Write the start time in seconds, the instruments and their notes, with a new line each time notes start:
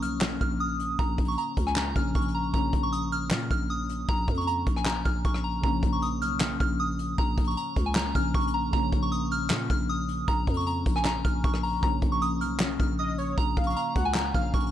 Already playing: synth keys C#3 F3 A#3 C#4
0.02 808-style bass B1, synth bell F6, closed hi-hat
0.21 snare, clap, closed hi-hat
0.41 808-style bass A#1, synth bell F6, kick, closed hi-hat
0.60 synth bell D#6
0.80 closed hi-hat
0.99 808-style bass A#1, synth bell A#5, kick, closed hi-hat
1.18 808-style bass A#1, kick, closed hi-hat
1.25 synth bell C#6, closed hi-hat
1.31 closed hi-hat
1.38 synth bell A#5, closed hi-hat
1.57 808-style bass C#2, kick, closed hi-hat
1.67 synth bell G#5, cross-stick
1.76 synth bell A#5, snare, clap, closed hi-hat
1.95 808-style bass A#1, synth keys C#3 F3 A#3 C#4, synth bell F6, kick, closed hi-hat
2.15 808-style bass A#1, synth bell C#6, kick, closed hi-hat
2.22 closed hi-hat
2.28 closed hi-hat
2.35 synth bell A#5
2.52 808-style bass A#1, synth keys C#3 F3 A#3, synth bell A#5, kick, closed hi-hat
2.57 synth keys C#4
2.73 808-style bass A#1, kick, closed hi-hat
2.83 synth bell C#6
2.92 synth bell D#6, closed hi-hat
3.12 synth bell F6, closed hi-hat
3.31 808-style bass A#2, snare, clap, closed hi-hat
3.51 808-style bass A#1, synth bell F6, kick, closed hi-hat
3.70 synth bell D#6
3.89 closed hi-hat
4.09 808-style bass A#1, synth bell A#5, kick, closed hi-hat
4.28 808-style bass F2, kick, closed hi-hat
4.34 synth bell C#6, closed hi-hat
4.41 closed hi-hat
4.47 synth bell A#5, closed hi-hat
4.67 808-style bass A#1, kick, closed hi-hat
4.76 synth bell G#5, cross-stick
4.86 synth bell A#5, snare, clap, closed hi-hat
5.05 808-style bass A#1, synth bell F6, kick, closed hi-hat
5.25 808-style bass A#1, synth bell C#6, kick, closed hi-hat
5.34 cross-stick
5.44 synth bell A#5
5.61 808-style bass A#1, synth keys C#3 F3 A#3, synth bell A#5, kick, closed hi-hat
5.66 synth keys C#4
5.83 808-style bass A#1, kick, closed hi-hat
5.93 synth bell C#6
6.02 synth bell D#6, closed hi-hat
6.22 808-style bass B1, synth bell F6, closed hi-hat
6.40 snare, clap, closed hi-hat
6.60 808-style bass A#1, synth bell F6, kick, closed hi-hat
6.80 synth bell D#6
6.99 closed hi-hat
7.18 808-style bass A#1, synth bell A#5, kick, closed hi-hat
7.38 808-style bass A#1, kick, closed hi-hat
7.44 synth bell C#6, closed hi-hat
7.51 closed hi-hat
7.57 synth bell A#5, closed hi-hat
7.76 808-style bass C#2, kick, closed hi-hat
7.86 synth bell G#5
7.95 synth bell A#5, snare, clap, closed hi-hat
8.14 808-style bass A#1, synth keys C#3 F3 A#3 C#4, synth bell F6, kick, closed hi-hat
8.34 808-style bass A#1, synth bell C#6, kick, closed hi-hat
8.41 closed hi-hat
8.47 closed hi-hat
8.54 synth bell A#5
8.71 808-style bass A#1, synth keys C#3 F3 A#3, synth bell A#5, kick, closed hi-hat
8.76 synth keys C#4
8.92 808-style bass A#1, kick, closed hi-hat
9.03 synth bell C#6
9.12 synth bell D#6, closed hi-hat
9.31 synth bell F6, closed hi-hat
9.50 808-style bass A#2, snare, clap, closed hi-hat
9.70 808-style bass A#1, synth bell F6, kick, closed hi-hat
9.89 synth bell D#6
10.09 closed hi-hat
10.28 808-style bass A#1, synth bell A#5, kick, closed hi-hat
10.47 808-style bass F2, kick, closed hi-hat
10.54 synth bell C#6, closed hi-hat
10.60 closed hi-hat
10.67 synth bell A#5, closed hi-hat
10.86 808-style bass A#1, kick, closed hi-hat
10.96 synth bell G#5, cross-stick
11.05 synth bell A#5, snare, clap, closed hi-hat
11.24 808-style bass A#1, synth bell F6, kick, closed hi-hat
11.44 808-style bass A#1, synth bell C#6, kick, closed hi-hat
11.54 cross-stick
11.63 synth bell A#5, open hi-hat
11.80 808-style bass A#1, synth keys C#3 F3 A#3, synth bell A#5, kick, closed hi-hat
11.85 synth keys C#4
12.02 808-style bass A#1, kick, closed hi-hat
12.12 synth bell C#6
12.22 synth bell D#6, closed hi-hat
12.41 808-style bass B1, synth bell F6, closed hi-hat
12.60 snare, clap, closed hi-hat
12.80 808-style bass A#1, synth bell F6, kick, closed hi-hat
12.99 soft synth lead D#5, synth bell D#6
13.18 soft synth lead C#5, closed hi-hat
13.38 808-style bass A#1, synth bell A#5, kick, closed hi-hat
13.57 808-style bass A#1, soft synth lead F5, kick, closed hi-hat
13.63 synth bell C#6, closed hi-hat
13.70 closed hi-hat
13.76 synth bell A#5, closed hi-hat
13.95 808-style bass C#2, soft synth lead F#5, kick, closed hi-hat
14.05 synth bell G#5
14.15 synth bell A#5, snare, clap, closed hi-hat
14.33 808-style bass A#1, synth keys C#3 F3 A#3 C#4, soft synth lead F5, synth bell F6, kick, closed hi-hat
14.54 808-style bass A#1, synth bell C#6, kick, closed hi-hat
14.60 closed hi-hat
14.67 closed hi-hat